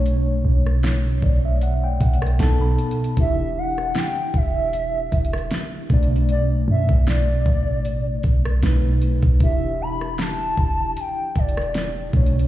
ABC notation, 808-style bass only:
X:1
M:4/4
L:1/16
Q:"Swing 16ths" 1/4=77
K:Edor
V:1 name="808-style bass" clef=bass
B,,,2 B,,,4 B,,,4 B,,,2 B,,,2 z2 | E,,,4 z2 E,,,4 E,,,2 z2 B,,,2- | B,,,2 F,, B,,,3 A,,,4 B,,,2 B,,,3 B,,, | E,,,6 E,,,2 z2 E,,,4 B,,,2 |]